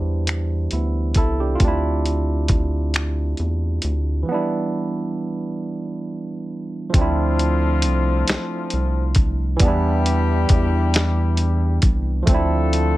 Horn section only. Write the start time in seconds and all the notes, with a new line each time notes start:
6.94 F3 A3 C4 F4
9.60 G3 D4 E4 G4
12.27 A3 F4 A4